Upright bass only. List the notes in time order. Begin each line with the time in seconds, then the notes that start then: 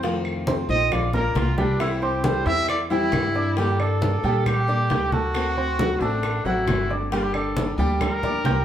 Already playing: F2
0.69 A#1
1.35 C2
2.46 E2
3.12 G2
4.24 A#2
4.90 D2
6.01 A1
6.45 A1
6.67 G1
7.78 D2
8.45 C2